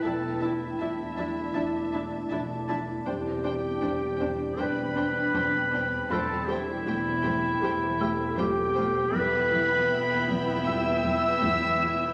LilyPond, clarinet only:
\new Staff \with { instrumentName = "Clarinet" } { \time 4/4 \key e \minor \tempo 4 = 79 a'8 e'2. r8 | g'2 b'2 | a'8 e'2~ e'8 g'4 | b'4. r8 e''2 | }